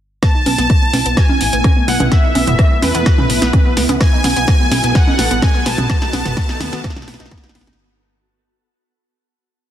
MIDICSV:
0, 0, Header, 1, 7, 480
1, 0, Start_track
1, 0, Tempo, 472441
1, 231, Time_signature, 4, 2, 24, 8
1, 9862, End_track
2, 0, Start_track
2, 0, Title_t, "Supersaw synth"
2, 0, Program_c, 0, 81
2, 228, Note_on_c, 0, 81, 118
2, 1190, Note_on_c, 0, 80, 112
2, 1218, Note_off_c, 0, 81, 0
2, 1910, Note_on_c, 0, 78, 95
2, 1932, Note_off_c, 0, 80, 0
2, 2149, Note_on_c, 0, 76, 99
2, 2157, Note_off_c, 0, 78, 0
2, 2871, Note_on_c, 0, 71, 85
2, 2891, Note_off_c, 0, 76, 0
2, 3790, Note_off_c, 0, 71, 0
2, 4072, Note_on_c, 0, 80, 98
2, 5032, Note_on_c, 0, 78, 100
2, 5060, Note_off_c, 0, 80, 0
2, 5477, Note_off_c, 0, 78, 0
2, 5513, Note_on_c, 0, 80, 111
2, 5752, Note_on_c, 0, 81, 116
2, 5759, Note_off_c, 0, 80, 0
2, 7391, Note_off_c, 0, 81, 0
2, 9862, End_track
3, 0, Start_track
3, 0, Title_t, "Ambient pad"
3, 0, Program_c, 1, 92
3, 231, Note_on_c, 1, 57, 85
3, 231, Note_on_c, 1, 59, 75
3, 231, Note_on_c, 1, 64, 92
3, 4032, Note_off_c, 1, 57, 0
3, 4032, Note_off_c, 1, 64, 0
3, 4069, Note_on_c, 1, 66, 79
3, 4069, Note_on_c, 1, 69, 94
3, 7870, Note_off_c, 1, 59, 0
3, 7871, Note_off_c, 1, 66, 0
3, 7871, Note_off_c, 1, 69, 0
3, 9862, End_track
4, 0, Start_track
4, 0, Title_t, "Synth pluck"
4, 0, Program_c, 2, 84
4, 229, Note_on_c, 2, 59, 83
4, 314, Note_off_c, 2, 59, 0
4, 354, Note_on_c, 2, 63, 74
4, 401, Note_off_c, 2, 63, 0
4, 469, Note_on_c, 2, 59, 96
4, 554, Note_off_c, 2, 59, 0
4, 593, Note_on_c, 2, 59, 102
4, 671, Note_off_c, 2, 59, 0
4, 709, Note_on_c, 2, 57, 80
4, 793, Note_off_c, 2, 57, 0
4, 834, Note_on_c, 2, 59, 72
4, 912, Note_off_c, 2, 59, 0
4, 949, Note_on_c, 2, 71, 69
4, 1000, Note_off_c, 2, 71, 0
4, 1074, Note_on_c, 2, 59, 96
4, 1152, Note_off_c, 2, 59, 0
4, 1189, Note_on_c, 2, 66, 80
4, 1274, Note_off_c, 2, 66, 0
4, 1314, Note_on_c, 2, 63, 72
4, 1361, Note_off_c, 2, 63, 0
4, 1429, Note_on_c, 2, 59, 77
4, 1513, Note_off_c, 2, 59, 0
4, 1553, Note_on_c, 2, 59, 99
4, 1632, Note_off_c, 2, 59, 0
4, 1669, Note_on_c, 2, 57, 84
4, 1753, Note_off_c, 2, 57, 0
4, 1794, Note_on_c, 2, 59, 75
4, 1872, Note_off_c, 2, 59, 0
4, 1909, Note_on_c, 2, 59, 101
4, 2021, Note_off_c, 2, 59, 0
4, 2033, Note_on_c, 2, 59, 96
4, 2112, Note_off_c, 2, 59, 0
4, 2148, Note_on_c, 2, 59, 83
4, 2233, Note_off_c, 2, 59, 0
4, 2274, Note_on_c, 2, 63, 77
4, 2321, Note_off_c, 2, 63, 0
4, 2389, Note_on_c, 2, 59, 100
4, 2473, Note_off_c, 2, 59, 0
4, 2513, Note_on_c, 2, 59, 101
4, 2592, Note_off_c, 2, 59, 0
4, 2630, Note_on_c, 2, 57, 81
4, 2714, Note_off_c, 2, 57, 0
4, 2754, Note_on_c, 2, 59, 77
4, 2832, Note_off_c, 2, 59, 0
4, 2869, Note_on_c, 2, 71, 73
4, 2920, Note_off_c, 2, 71, 0
4, 2993, Note_on_c, 2, 59, 103
4, 3072, Note_off_c, 2, 59, 0
4, 3109, Note_on_c, 2, 66, 80
4, 3193, Note_off_c, 2, 66, 0
4, 3233, Note_on_c, 2, 63, 74
4, 3281, Note_off_c, 2, 63, 0
4, 3350, Note_on_c, 2, 59, 79
4, 3434, Note_off_c, 2, 59, 0
4, 3474, Note_on_c, 2, 59, 97
4, 3552, Note_off_c, 2, 59, 0
4, 3589, Note_on_c, 2, 57, 84
4, 3673, Note_off_c, 2, 57, 0
4, 3713, Note_on_c, 2, 59, 74
4, 3792, Note_off_c, 2, 59, 0
4, 3829, Note_on_c, 2, 59, 101
4, 3941, Note_off_c, 2, 59, 0
4, 3953, Note_on_c, 2, 59, 99
4, 4031, Note_off_c, 2, 59, 0
4, 4069, Note_on_c, 2, 59, 75
4, 4154, Note_off_c, 2, 59, 0
4, 4194, Note_on_c, 2, 63, 71
4, 4241, Note_off_c, 2, 63, 0
4, 4310, Note_on_c, 2, 59, 90
4, 4394, Note_off_c, 2, 59, 0
4, 4434, Note_on_c, 2, 59, 96
4, 4512, Note_off_c, 2, 59, 0
4, 4549, Note_on_c, 2, 57, 76
4, 4633, Note_off_c, 2, 57, 0
4, 4674, Note_on_c, 2, 59, 69
4, 4752, Note_off_c, 2, 59, 0
4, 4789, Note_on_c, 2, 71, 67
4, 4840, Note_off_c, 2, 71, 0
4, 4913, Note_on_c, 2, 59, 90
4, 4992, Note_off_c, 2, 59, 0
4, 5030, Note_on_c, 2, 59, 79
4, 5114, Note_off_c, 2, 59, 0
4, 5154, Note_on_c, 2, 63, 73
4, 5201, Note_off_c, 2, 63, 0
4, 5270, Note_on_c, 2, 59, 98
4, 5354, Note_off_c, 2, 59, 0
4, 5394, Note_on_c, 2, 59, 93
4, 5472, Note_off_c, 2, 59, 0
4, 5511, Note_on_c, 2, 57, 81
4, 5594, Note_off_c, 2, 57, 0
4, 5635, Note_on_c, 2, 59, 70
4, 5712, Note_off_c, 2, 59, 0
4, 5750, Note_on_c, 2, 71, 75
4, 5800, Note_off_c, 2, 71, 0
4, 5873, Note_on_c, 2, 59, 95
4, 5952, Note_off_c, 2, 59, 0
4, 5989, Note_on_c, 2, 59, 82
4, 6073, Note_off_c, 2, 59, 0
4, 6114, Note_on_c, 2, 63, 79
4, 6161, Note_off_c, 2, 63, 0
4, 6229, Note_on_c, 2, 59, 100
4, 6313, Note_off_c, 2, 59, 0
4, 6354, Note_on_c, 2, 59, 104
4, 6432, Note_off_c, 2, 59, 0
4, 6469, Note_on_c, 2, 59, 84
4, 6553, Note_off_c, 2, 59, 0
4, 6594, Note_on_c, 2, 63, 77
4, 6641, Note_off_c, 2, 63, 0
4, 6710, Note_on_c, 2, 59, 96
4, 6794, Note_off_c, 2, 59, 0
4, 6834, Note_on_c, 2, 59, 100
4, 6912, Note_off_c, 2, 59, 0
4, 6949, Note_on_c, 2, 59, 79
4, 7033, Note_off_c, 2, 59, 0
4, 7075, Note_on_c, 2, 63, 79
4, 7121, Note_off_c, 2, 63, 0
4, 7190, Note_on_c, 2, 59, 86
4, 7274, Note_off_c, 2, 59, 0
4, 7316, Note_on_c, 2, 63, 82
4, 7362, Note_off_c, 2, 63, 0
4, 7431, Note_on_c, 2, 59, 91
4, 7514, Note_off_c, 2, 59, 0
4, 7556, Note_on_c, 2, 63, 79
4, 7602, Note_off_c, 2, 63, 0
4, 7671, Note_on_c, 2, 59, 90
4, 7754, Note_off_c, 2, 59, 0
4, 7796, Note_on_c, 2, 63, 79
4, 7842, Note_off_c, 2, 63, 0
4, 9862, End_track
5, 0, Start_track
5, 0, Title_t, "Analog synth bass"
5, 0, Program_c, 3, 38
5, 469, Note_on_c, 3, 35, 91
5, 572, Note_off_c, 3, 35, 0
5, 593, Note_on_c, 3, 35, 81
5, 689, Note_off_c, 3, 35, 0
5, 949, Note_on_c, 3, 35, 91
5, 1052, Note_off_c, 3, 35, 0
5, 1074, Note_on_c, 3, 35, 80
5, 1170, Note_off_c, 3, 35, 0
5, 1430, Note_on_c, 3, 33, 89
5, 1533, Note_off_c, 3, 33, 0
5, 1553, Note_on_c, 3, 33, 80
5, 1649, Note_off_c, 3, 33, 0
5, 1908, Note_on_c, 3, 35, 91
5, 2012, Note_off_c, 3, 35, 0
5, 2034, Note_on_c, 3, 35, 81
5, 2130, Note_off_c, 3, 35, 0
5, 2389, Note_on_c, 3, 35, 92
5, 2492, Note_off_c, 3, 35, 0
5, 2514, Note_on_c, 3, 30, 79
5, 2610, Note_off_c, 3, 30, 0
5, 2870, Note_on_c, 3, 40, 92
5, 2973, Note_off_c, 3, 40, 0
5, 2995, Note_on_c, 3, 40, 78
5, 3090, Note_off_c, 3, 40, 0
5, 3351, Note_on_c, 3, 35, 94
5, 3453, Note_off_c, 3, 35, 0
5, 3475, Note_on_c, 3, 35, 80
5, 3570, Note_off_c, 3, 35, 0
5, 3830, Note_on_c, 3, 37, 93
5, 3933, Note_off_c, 3, 37, 0
5, 3954, Note_on_c, 3, 37, 82
5, 4050, Note_off_c, 3, 37, 0
5, 4311, Note_on_c, 3, 35, 94
5, 4413, Note_off_c, 3, 35, 0
5, 4435, Note_on_c, 3, 35, 79
5, 4530, Note_off_c, 3, 35, 0
5, 4790, Note_on_c, 3, 35, 94
5, 4893, Note_off_c, 3, 35, 0
5, 4915, Note_on_c, 3, 35, 81
5, 5010, Note_off_c, 3, 35, 0
5, 5271, Note_on_c, 3, 33, 92
5, 5373, Note_off_c, 3, 33, 0
5, 5396, Note_on_c, 3, 33, 82
5, 5491, Note_off_c, 3, 33, 0
5, 5750, Note_on_c, 3, 35, 92
5, 5853, Note_off_c, 3, 35, 0
5, 5875, Note_on_c, 3, 35, 83
5, 5970, Note_off_c, 3, 35, 0
5, 6231, Note_on_c, 3, 35, 95
5, 6333, Note_off_c, 3, 35, 0
5, 6355, Note_on_c, 3, 30, 81
5, 6450, Note_off_c, 3, 30, 0
5, 6711, Note_on_c, 3, 39, 94
5, 6813, Note_off_c, 3, 39, 0
5, 6836, Note_on_c, 3, 39, 80
5, 6931, Note_off_c, 3, 39, 0
5, 7189, Note_on_c, 3, 35, 94
5, 7292, Note_off_c, 3, 35, 0
5, 7315, Note_on_c, 3, 35, 82
5, 7410, Note_off_c, 3, 35, 0
5, 7671, Note_on_c, 3, 35, 93
5, 7773, Note_off_c, 3, 35, 0
5, 7794, Note_on_c, 3, 35, 81
5, 7890, Note_off_c, 3, 35, 0
5, 9862, End_track
6, 0, Start_track
6, 0, Title_t, "Riser"
6, 0, Program_c, 4, 103
6, 230, Note_on_c, 4, 60, 73
6, 7910, Note_off_c, 4, 60, 0
6, 9862, End_track
7, 0, Start_track
7, 0, Title_t, "Drums"
7, 230, Note_on_c, 9, 36, 102
7, 230, Note_on_c, 9, 37, 74
7, 230, Note_on_c, 9, 38, 46
7, 230, Note_on_c, 9, 42, 51
7, 331, Note_off_c, 9, 36, 0
7, 331, Note_off_c, 9, 37, 0
7, 331, Note_off_c, 9, 38, 0
7, 331, Note_off_c, 9, 42, 0
7, 469, Note_on_c, 9, 63, 89
7, 470, Note_on_c, 9, 46, 92
7, 570, Note_off_c, 9, 63, 0
7, 571, Note_off_c, 9, 46, 0
7, 594, Note_on_c, 9, 38, 41
7, 594, Note_on_c, 9, 42, 66
7, 695, Note_off_c, 9, 38, 0
7, 695, Note_off_c, 9, 42, 0
7, 709, Note_on_c, 9, 36, 111
7, 710, Note_on_c, 9, 37, 38
7, 710, Note_on_c, 9, 42, 50
7, 811, Note_off_c, 9, 36, 0
7, 811, Note_off_c, 9, 37, 0
7, 812, Note_off_c, 9, 42, 0
7, 949, Note_on_c, 9, 38, 49
7, 949, Note_on_c, 9, 46, 97
7, 950, Note_on_c, 9, 63, 64
7, 1051, Note_off_c, 9, 38, 0
7, 1051, Note_off_c, 9, 46, 0
7, 1051, Note_off_c, 9, 63, 0
7, 1074, Note_on_c, 9, 42, 65
7, 1176, Note_off_c, 9, 42, 0
7, 1189, Note_on_c, 9, 36, 114
7, 1189, Note_on_c, 9, 37, 73
7, 1190, Note_on_c, 9, 38, 49
7, 1190, Note_on_c, 9, 42, 51
7, 1291, Note_off_c, 9, 36, 0
7, 1291, Note_off_c, 9, 37, 0
7, 1291, Note_off_c, 9, 38, 0
7, 1291, Note_off_c, 9, 42, 0
7, 1313, Note_on_c, 9, 63, 92
7, 1415, Note_off_c, 9, 63, 0
7, 1429, Note_on_c, 9, 46, 104
7, 1531, Note_off_c, 9, 46, 0
7, 1554, Note_on_c, 9, 42, 65
7, 1656, Note_off_c, 9, 42, 0
7, 1669, Note_on_c, 9, 36, 113
7, 1669, Note_on_c, 9, 37, 74
7, 1669, Note_on_c, 9, 63, 60
7, 1670, Note_on_c, 9, 42, 53
7, 1770, Note_off_c, 9, 37, 0
7, 1770, Note_off_c, 9, 63, 0
7, 1771, Note_off_c, 9, 36, 0
7, 1771, Note_off_c, 9, 42, 0
7, 1910, Note_on_c, 9, 38, 53
7, 1910, Note_on_c, 9, 46, 99
7, 2012, Note_off_c, 9, 38, 0
7, 2012, Note_off_c, 9, 46, 0
7, 2033, Note_on_c, 9, 45, 79
7, 2033, Note_on_c, 9, 63, 90
7, 2035, Note_on_c, 9, 42, 66
7, 2135, Note_off_c, 9, 45, 0
7, 2135, Note_off_c, 9, 63, 0
7, 2136, Note_off_c, 9, 42, 0
7, 2149, Note_on_c, 9, 37, 39
7, 2150, Note_on_c, 9, 36, 112
7, 2150, Note_on_c, 9, 38, 55
7, 2150, Note_on_c, 9, 42, 52
7, 2251, Note_off_c, 9, 36, 0
7, 2251, Note_off_c, 9, 37, 0
7, 2252, Note_off_c, 9, 38, 0
7, 2252, Note_off_c, 9, 42, 0
7, 2389, Note_on_c, 9, 63, 87
7, 2390, Note_on_c, 9, 46, 104
7, 2491, Note_off_c, 9, 63, 0
7, 2492, Note_off_c, 9, 46, 0
7, 2513, Note_on_c, 9, 45, 74
7, 2514, Note_on_c, 9, 42, 63
7, 2615, Note_off_c, 9, 45, 0
7, 2616, Note_off_c, 9, 42, 0
7, 2628, Note_on_c, 9, 37, 80
7, 2630, Note_on_c, 9, 36, 123
7, 2630, Note_on_c, 9, 42, 51
7, 2730, Note_off_c, 9, 37, 0
7, 2731, Note_off_c, 9, 36, 0
7, 2732, Note_off_c, 9, 42, 0
7, 2869, Note_on_c, 9, 63, 64
7, 2870, Note_on_c, 9, 38, 61
7, 2870, Note_on_c, 9, 46, 102
7, 2971, Note_off_c, 9, 38, 0
7, 2971, Note_off_c, 9, 46, 0
7, 2971, Note_off_c, 9, 63, 0
7, 2994, Note_on_c, 9, 42, 64
7, 3096, Note_off_c, 9, 42, 0
7, 3109, Note_on_c, 9, 37, 76
7, 3110, Note_on_c, 9, 36, 117
7, 3110, Note_on_c, 9, 38, 63
7, 3110, Note_on_c, 9, 42, 53
7, 3211, Note_off_c, 9, 36, 0
7, 3211, Note_off_c, 9, 37, 0
7, 3211, Note_off_c, 9, 38, 0
7, 3211, Note_off_c, 9, 42, 0
7, 3234, Note_on_c, 9, 45, 84
7, 3234, Note_on_c, 9, 63, 91
7, 3335, Note_off_c, 9, 45, 0
7, 3335, Note_off_c, 9, 63, 0
7, 3350, Note_on_c, 9, 46, 112
7, 3452, Note_off_c, 9, 46, 0
7, 3475, Note_on_c, 9, 38, 60
7, 3475, Note_on_c, 9, 42, 67
7, 3576, Note_off_c, 9, 38, 0
7, 3576, Note_off_c, 9, 42, 0
7, 3589, Note_on_c, 9, 37, 38
7, 3589, Note_on_c, 9, 63, 63
7, 3590, Note_on_c, 9, 36, 121
7, 3590, Note_on_c, 9, 42, 52
7, 3691, Note_off_c, 9, 37, 0
7, 3691, Note_off_c, 9, 63, 0
7, 3692, Note_off_c, 9, 36, 0
7, 3692, Note_off_c, 9, 42, 0
7, 3829, Note_on_c, 9, 38, 69
7, 3829, Note_on_c, 9, 46, 101
7, 3930, Note_off_c, 9, 38, 0
7, 3930, Note_off_c, 9, 46, 0
7, 3954, Note_on_c, 9, 42, 65
7, 3954, Note_on_c, 9, 63, 87
7, 4055, Note_off_c, 9, 42, 0
7, 4055, Note_off_c, 9, 63, 0
7, 4070, Note_on_c, 9, 36, 119
7, 4070, Note_on_c, 9, 37, 79
7, 4070, Note_on_c, 9, 38, 73
7, 4070, Note_on_c, 9, 42, 49
7, 4171, Note_off_c, 9, 36, 0
7, 4172, Note_off_c, 9, 37, 0
7, 4172, Note_off_c, 9, 38, 0
7, 4172, Note_off_c, 9, 42, 0
7, 4309, Note_on_c, 9, 38, 71
7, 4309, Note_on_c, 9, 46, 104
7, 4310, Note_on_c, 9, 63, 87
7, 4411, Note_off_c, 9, 38, 0
7, 4411, Note_off_c, 9, 46, 0
7, 4412, Note_off_c, 9, 63, 0
7, 4434, Note_on_c, 9, 42, 65
7, 4536, Note_off_c, 9, 42, 0
7, 4550, Note_on_c, 9, 36, 125
7, 4550, Note_on_c, 9, 37, 79
7, 4550, Note_on_c, 9, 38, 80
7, 4550, Note_on_c, 9, 42, 52
7, 4651, Note_off_c, 9, 37, 0
7, 4652, Note_off_c, 9, 36, 0
7, 4652, Note_off_c, 9, 38, 0
7, 4652, Note_off_c, 9, 42, 0
7, 4790, Note_on_c, 9, 63, 63
7, 4791, Note_on_c, 9, 38, 80
7, 4791, Note_on_c, 9, 46, 109
7, 4892, Note_off_c, 9, 38, 0
7, 4892, Note_off_c, 9, 46, 0
7, 4892, Note_off_c, 9, 63, 0
7, 4915, Note_on_c, 9, 42, 64
7, 5016, Note_off_c, 9, 42, 0
7, 5030, Note_on_c, 9, 36, 121
7, 5030, Note_on_c, 9, 37, 39
7, 5031, Note_on_c, 9, 38, 80
7, 5031, Note_on_c, 9, 42, 52
7, 5132, Note_off_c, 9, 36, 0
7, 5132, Note_off_c, 9, 37, 0
7, 5132, Note_off_c, 9, 38, 0
7, 5132, Note_off_c, 9, 42, 0
7, 5155, Note_on_c, 9, 63, 88
7, 5256, Note_off_c, 9, 63, 0
7, 5271, Note_on_c, 9, 38, 89
7, 5271, Note_on_c, 9, 46, 110
7, 5373, Note_off_c, 9, 38, 0
7, 5373, Note_off_c, 9, 46, 0
7, 5395, Note_on_c, 9, 42, 66
7, 5496, Note_off_c, 9, 42, 0
7, 5510, Note_on_c, 9, 36, 123
7, 5510, Note_on_c, 9, 37, 76
7, 5510, Note_on_c, 9, 63, 61
7, 5511, Note_on_c, 9, 38, 90
7, 5511, Note_on_c, 9, 42, 53
7, 5611, Note_off_c, 9, 37, 0
7, 5611, Note_off_c, 9, 63, 0
7, 5612, Note_off_c, 9, 36, 0
7, 5612, Note_off_c, 9, 38, 0
7, 5612, Note_off_c, 9, 42, 0
7, 5751, Note_on_c, 9, 38, 88
7, 5751, Note_on_c, 9, 46, 110
7, 5852, Note_off_c, 9, 38, 0
7, 5852, Note_off_c, 9, 46, 0
7, 5875, Note_on_c, 9, 45, 86
7, 5875, Note_on_c, 9, 63, 90
7, 5876, Note_on_c, 9, 42, 63
7, 5976, Note_off_c, 9, 45, 0
7, 5976, Note_off_c, 9, 63, 0
7, 5977, Note_off_c, 9, 42, 0
7, 5990, Note_on_c, 9, 36, 124
7, 5990, Note_on_c, 9, 37, 76
7, 5991, Note_on_c, 9, 38, 93
7, 5991, Note_on_c, 9, 42, 48
7, 6092, Note_off_c, 9, 36, 0
7, 6092, Note_off_c, 9, 37, 0
7, 6092, Note_off_c, 9, 38, 0
7, 6092, Note_off_c, 9, 42, 0
7, 6115, Note_on_c, 9, 38, 82
7, 6217, Note_off_c, 9, 38, 0
7, 6230, Note_on_c, 9, 63, 89
7, 6231, Note_on_c, 9, 38, 88
7, 6231, Note_on_c, 9, 46, 108
7, 6331, Note_off_c, 9, 63, 0
7, 6333, Note_off_c, 9, 38, 0
7, 6333, Note_off_c, 9, 46, 0
7, 6355, Note_on_c, 9, 38, 84
7, 6355, Note_on_c, 9, 42, 64
7, 6355, Note_on_c, 9, 45, 79
7, 6456, Note_off_c, 9, 45, 0
7, 6457, Note_off_c, 9, 38, 0
7, 6457, Note_off_c, 9, 42, 0
7, 6470, Note_on_c, 9, 36, 126
7, 6470, Note_on_c, 9, 37, 39
7, 6471, Note_on_c, 9, 38, 98
7, 6471, Note_on_c, 9, 42, 50
7, 6572, Note_off_c, 9, 36, 0
7, 6572, Note_off_c, 9, 37, 0
7, 6573, Note_off_c, 9, 38, 0
7, 6573, Note_off_c, 9, 42, 0
7, 6595, Note_on_c, 9, 38, 83
7, 6697, Note_off_c, 9, 38, 0
7, 6710, Note_on_c, 9, 63, 62
7, 6711, Note_on_c, 9, 38, 99
7, 6711, Note_on_c, 9, 46, 107
7, 6812, Note_off_c, 9, 63, 0
7, 6813, Note_off_c, 9, 38, 0
7, 6813, Note_off_c, 9, 46, 0
7, 6836, Note_on_c, 9, 38, 89
7, 6836, Note_on_c, 9, 42, 63
7, 6938, Note_off_c, 9, 38, 0
7, 6938, Note_off_c, 9, 42, 0
7, 6950, Note_on_c, 9, 36, 121
7, 6951, Note_on_c, 9, 37, 75
7, 6952, Note_on_c, 9, 38, 99
7, 6952, Note_on_c, 9, 42, 52
7, 7014, Note_off_c, 9, 38, 0
7, 7014, Note_on_c, 9, 38, 92
7, 7052, Note_off_c, 9, 36, 0
7, 7052, Note_off_c, 9, 37, 0
7, 7053, Note_off_c, 9, 42, 0
7, 7075, Note_on_c, 9, 45, 85
7, 7075, Note_on_c, 9, 63, 91
7, 7076, Note_off_c, 9, 38, 0
7, 7076, Note_on_c, 9, 38, 89
7, 7134, Note_off_c, 9, 38, 0
7, 7134, Note_on_c, 9, 38, 89
7, 7176, Note_off_c, 9, 45, 0
7, 7176, Note_off_c, 9, 63, 0
7, 7191, Note_off_c, 9, 38, 0
7, 7191, Note_on_c, 9, 38, 108
7, 7191, Note_on_c, 9, 46, 117
7, 7253, Note_off_c, 9, 38, 0
7, 7253, Note_on_c, 9, 38, 94
7, 7292, Note_off_c, 9, 46, 0
7, 7315, Note_off_c, 9, 38, 0
7, 7315, Note_on_c, 9, 38, 90
7, 7315, Note_on_c, 9, 42, 62
7, 7372, Note_off_c, 9, 38, 0
7, 7372, Note_on_c, 9, 38, 94
7, 7417, Note_off_c, 9, 42, 0
7, 7430, Note_on_c, 9, 36, 125
7, 7431, Note_off_c, 9, 38, 0
7, 7431, Note_on_c, 9, 37, 73
7, 7431, Note_on_c, 9, 38, 108
7, 7431, Note_on_c, 9, 42, 51
7, 7431, Note_on_c, 9, 63, 63
7, 7493, Note_off_c, 9, 38, 0
7, 7493, Note_on_c, 9, 38, 100
7, 7532, Note_off_c, 9, 36, 0
7, 7532, Note_off_c, 9, 42, 0
7, 7533, Note_off_c, 9, 37, 0
7, 7533, Note_off_c, 9, 63, 0
7, 7555, Note_off_c, 9, 38, 0
7, 7555, Note_on_c, 9, 38, 92
7, 7613, Note_off_c, 9, 38, 0
7, 7613, Note_on_c, 9, 38, 95
7, 7671, Note_off_c, 9, 38, 0
7, 7671, Note_on_c, 9, 38, 108
7, 7671, Note_on_c, 9, 46, 111
7, 7734, Note_off_c, 9, 38, 0
7, 7734, Note_on_c, 9, 38, 93
7, 7773, Note_off_c, 9, 46, 0
7, 7795, Note_on_c, 9, 63, 90
7, 7796, Note_off_c, 9, 38, 0
7, 7796, Note_on_c, 9, 38, 102
7, 7796, Note_on_c, 9, 42, 66
7, 7853, Note_off_c, 9, 38, 0
7, 7853, Note_on_c, 9, 38, 101
7, 7897, Note_off_c, 9, 63, 0
7, 7898, Note_off_c, 9, 42, 0
7, 7955, Note_off_c, 9, 38, 0
7, 9862, End_track
0, 0, End_of_file